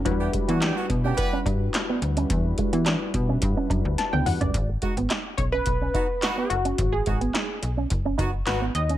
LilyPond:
<<
  \new Staff \with { instrumentName = "Analog polysynth" } { \time 4/4 \key e \lydian \tempo 4 = 107 << { r1 | r2. a''16 g''16 fis''16 d''16~ | d''16 r4 r16 cis''16 b'4.~ b'16 fis'8~ | fis'16 gis'4. r4 r16 b'8 dis''8 | } \\ { <fis g d' e' fis' b'>1~ | <fis g d' e' fis' b'>1 | r1 | r1 | } >> }
  \new Staff \with { instrumentName = "Horn section" } { \time 4/4 \key e \lydian r16 <b d' g'>16 r16 <b d' fis'>16 <b d' g'>16 <b d' fis'>16 r16 <b d' g'>16 <b g' b'>8 r4. | r1 | r8 <b dis' fis'>16 r4. r16 <b dis' fis'>16 r16 <b dis' fis'>8. r16 | r8 <b dis' fis'>16 r4. r16 <b dis' fis'>16 r16 <b dis' fis'>8 r8 | }
  \new Staff \with { instrumentName = "Clean electric guitar" } { \time 4/4 \key e \lydian r8 gis16 b16 d'16 r8 cis'16 r16 cis'16 d'16 r8 b16 r16 cis'16 | r8 gis16 b16 d'16 r8 cis'16 r16 cis'16 d'16 r8 b16 r16 cis'16 | r8 gis16 b16 dis'16 r8 cis'16 r16 cis'16 dis'16 r8 b16 r16 cis'16 | r8 gis16 b16 dis'16 r8 cis'16 r16 cis'16 dis'16 r8 b16 r16 cis'16 | }
  \new Staff \with { instrumentName = "FM bass" } { \clef bass \time 4/4 \key e \lydian e,8 r16 e8 r16 b,8 r8 g,8 r8 d,8 | e,8 r16 e8 r16 b,8 g,16 r16 fis,16 d,16 r16 d,16 e,16 fis,,16 | gis,,8 r16 gis,,16 r8 b,,8 b,,8 r4 fis,,8 | gis,,8 gis,,8 r8 b,,8 fis,,8 fis,,8 gis,,8 dis,8 | }
  \new DrumStaff \with { instrumentName = "Drums" } \drummode { \time 4/4 <hh bd>8 <hh bd>16 hh16 <hc hh sn>8 <hh bd>8 <hh bd>8 <hh bd>8 <hc hh sn>8 hh16 hh16 | <hh bd>8 <hh bd>16 hh16 <hc hh sn>8 <hh bd>8 <hh bd>8 <hh bd>8 <hh sn>16 tommh16 <hho toml>16 <hh tomfh>16 | <hh bd>8 <hh bd>16 hh16 <hc hh sn>8 <hh bd>8 <hh bd>8 <hh bd>8 <hc hh sn>8 hh16 hh16 | <hh bd>8 <hh bd>16 hh16 <hc hh sn>8 hh8 <hh bd>8 <hh bd>8 <hc hh sn>8 hh16 hh16 | }
>>